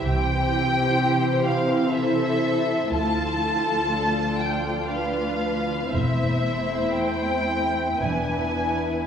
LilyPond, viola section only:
\new Staff \with { instrumentName = "Viola section" } { \time 3/4 \key a \minor \tempo 4 = 60 << { e'2.~ | e'4 d'2 | c'2 d'4 | } \\ { e2. | f2. | a2 b4 | } >> }